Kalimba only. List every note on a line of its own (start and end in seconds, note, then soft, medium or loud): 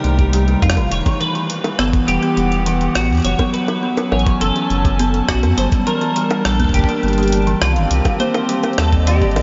0.04 0.16 A3 medium
0.33 0.40 G3 loud
0.48 0.60 G3 medium
0.62 0.76 D#4 loud
0.77 0.91 D#3 medium
1.06 1.20 E3 loud
1.21 1.32 E3 medium
1.35 1.49 E3 medium
1.64 1.78 G3 medium
1.79 1.91 B3 loud
2.08 2.22 G3 loud
2.23 2.34 B3 medium
2.37 2.44 G3 loud
2.66 2.80 E3 loud
2.81 2.93 E3 medium
2.95 3.09 E3 medium
3.25 3.38 F#3 medium
3.39 3.51 B3 loud
3.68 3.82 F#3 loud
3.83 3.95 B3 medium
3.97 4.04 F#3 loud
4.27 4.40 E3 loud
4.41 4.53 E3 medium
4.56 4.70 E3 medium
4.85 4.99 F#3 medium
4.99 5.11 B3 loud
5.29 5.42 F#3 loud
5.43 5.55 B3 medium
5.58 5.65 G3 loud
5.87 6.00 E3 loud
6.01 6.13 E3 medium
6.16 6.30 E3 medium
6.45 6.59 G3 medium
6.60 6.71 A#3 loud
6.89 7.03 G3 loud
7.03 7.15 A#3 medium
7.18 7.25 G3 loud
7.47 7.61 E3 loud
7.62 7.73 D#3 medium
7.76 7.90 D#3 medium
8.05 8.19 G3 medium
8.20 8.31 A#3 loud
8.49 8.63 G3 loud
8.63 8.75 A#3 medium
8.78 8.85 G3 loud
9.07 9.20 D#3 loud
9.22 9.33 D#3 medium
9.36 9.42 D#3 medium